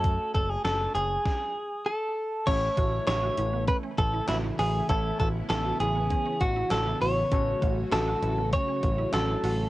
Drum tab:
CC |--------|x-------|--------|--------|
HH |xxxx----|xxxxxxxo|xxxxxxxo|xxxxxxxo|
CP |--------|--x---x-|--x---x-|--x---x-|
SD |--o-o---|--o---o-|--o---o-|--o---o-|
BD |oo--o---|oo--oo--|oo--oo--|oo--oo--|